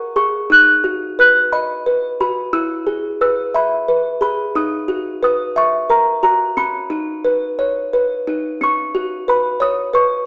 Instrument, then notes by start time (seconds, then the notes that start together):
music box
Already playing: G#4 A#4 F#5 C#6
0.16 G#4 C#6
0.50 D#4 F#6
0.84 F#4
1.19 B4 F#6
1.52 D#5 B5
1.86 B4
2.20 F#4 B5
2.53 E4 E6
2.87 G#4
3.21 B4 E6
3.54 E5 B5
3.88 B4
4.21 G#4 B5
4.55 D#4 D#6
4.88 F#4
5.23 B4 D#6
5.56 E5 C#6
5.90 A#4 A#5
6.23 F#4 A#5
6.57 C#4 B5
6.90 D#4
7.25 B4
7.59 C#5
7.93 B4
8.27 D#4
8.61 C#4 C#6
8.95 F#4
9.28 B4 B5
9.60 C#5 D#6
9.93 B4 C#6